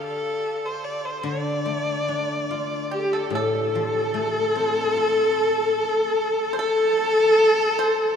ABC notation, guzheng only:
X:1
M:2/4
L:1/8
Q:1/4=74
K:none
V:1 name="Guzheng"
D,2 z D, | A, D F2 | A,, F, A, C | F4 |
z4 |]